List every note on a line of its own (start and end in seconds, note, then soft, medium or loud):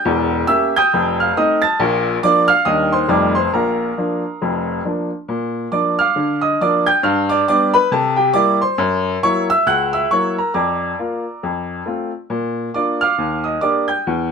0.05 0.42 E1 medium
0.05 0.42 E2 medium
0.47 0.72 A#3 soft
0.47 0.72 C#4 medium
0.47 0.72 G4 medium
0.47 0.72 E5 medium
0.47 0.70 E6 loud
0.76 1.16 G5 medium
0.76 1.16 D#6 medium
0.76 1.12 G6 loud
0.93 1.30 F1 medium
0.93 1.30 F2 medium
1.20 1.36 F5 medium
1.20 1.34 F6 medium
1.37 1.61 A3 medium
1.37 1.60 C4 medium
1.37 1.61 D#4 medium
1.37 1.61 D#5 medium
1.37 1.58 D#6 medium
1.62 1.79 A5 medium
1.62 1.76 A6 loud
1.80 2.16 A#1 loud
1.80 2.16 A#2 loud
2.23 2.47 F3 medium
2.23 2.47 A#3 medium
2.23 2.48 D4 medium
2.23 2.48 D5 medium
2.23 2.45 D6 loud
2.48 2.65 F5 medium
2.48 2.63 F6 loud
2.65 3.03 D#2 medium
2.65 3.03 D#3 medium
2.65 2.90 G3 soft
2.65 2.90 A#3 soft
2.65 2.90 D4 medium
2.65 2.91 D#5 medium
2.65 2.88 D#6 loud
2.92 3.09 C5 medium
2.92 3.07 C6 medium
3.08 3.46 F1 medium
3.08 3.46 F2 medium
3.08 3.33 G3 medium
3.08 3.34 A3 soft
3.08 3.34 D#4 soft
3.08 3.34 D5 medium
3.08 3.32 D6 medium
3.35 3.52 C5 medium
3.35 3.50 C6 medium
3.53 3.91 A#1 medium
3.53 3.90 A#2 medium
3.53 4.81 A#4 medium
3.53 4.81 F5 soft
3.53 4.65 A#5 medium
3.98 4.22 F3 soft
3.98 4.22 A#3 soft
3.98 4.22 D4 soft
4.42 4.78 F1 medium
4.42 4.78 F2 medium
4.85 5.09 F3 soft
4.85 5.09 A#3 soft
4.85 5.09 D4 soft
5.28 5.66 A#2 medium
5.72 5.96 F3 soft
5.72 5.96 A#3 soft
5.72 5.97 D4 soft
5.72 5.97 D5 medium
5.72 5.94 D6 medium
5.99 6.40 F5 medium
5.99 6.40 D6 medium
5.99 6.36 F6 medium
6.16 6.53 D3 medium
6.41 6.59 D#5 medium
6.41 6.57 D#6 medium
6.61 6.85 F3 soft
6.61 6.85 A#3 medium
6.61 6.86 D4 medium
6.61 6.85 D5 medium
6.61 6.83 D6 medium
6.86 7.03 G5 medium
6.86 7.01 G6 loud
7.03 7.41 G2 medium
7.03 7.29 F5 medium
7.03 7.26 F6 medium
7.29 7.47 D5 medium
7.29 7.44 D6 loud
7.48 7.73 G3 medium
7.48 7.73 B3 medium
7.48 7.73 D4 medium
7.48 7.73 D5 medium
7.48 7.70 D6 loud
7.74 7.90 B4 medium
7.74 7.89 B5 loud
7.92 8.29 C3 medium
7.92 8.17 A4 medium
7.92 8.14 A5 medium
8.16 8.34 G4 medium
8.16 8.32 G5 medium
8.33 8.58 G3 medium
8.33 8.59 A#3 medium
8.33 8.59 E4 medium
8.33 8.60 D5 medium
8.33 8.57 D6 loud
8.62 8.78 C5 medium
8.62 8.76 C6 medium
8.78 9.16 F#2 loud
9.23 9.47 F#3 medium
9.23 9.47 A#3 medium
9.23 9.47 E4 medium
9.23 9.48 C#5 medium
9.23 9.46 C#6 loud
9.50 9.67 E5 medium
9.50 9.65 E6 loud
9.67 10.04 C#2 medium
9.67 9.92 F#5 medium
9.67 9.89 F#6 loud
9.93 10.10 E5 medium
9.93 10.08 E6 medium
10.11 10.35 F#3 soft
10.11 10.36 A#3 medium
10.11 10.36 E4 soft
10.11 10.36 C#5 medium
10.11 10.33 C#6 loud
10.38 10.54 A#4 soft
10.38 10.53 A#5 medium
10.54 10.92 F2 medium
10.54 12.09 D5 medium
10.54 12.09 A#5 medium
10.54 11.89 D6 medium
10.99 11.23 A#3 soft
10.99 11.23 F4 soft
11.43 11.80 F2 medium
11.86 12.10 A3 soft
11.86 12.10 C4 soft
11.86 12.11 F4 soft
12.30 12.67 A#2 medium
12.74 12.99 A#3 soft
12.74 12.99 D4 soft
12.74 12.99 F4 soft
12.74 12.99 D5 medium
12.74 12.97 D6 medium
13.01 13.43 F5 medium
13.01 13.42 D6 medium
13.01 13.38 F6 loud
13.18 13.55 D#2 medium
13.44 13.61 D#5 medium
13.44 13.59 D#6 medium
13.61 13.86 A#3 soft
13.61 13.86 D4 soft
13.61 13.86 G4 soft
13.61 13.87 D5 medium
13.61 13.84 D6 medium
13.88 14.05 G5 medium
13.88 14.03 G6 medium
14.07 14.32 E2 medium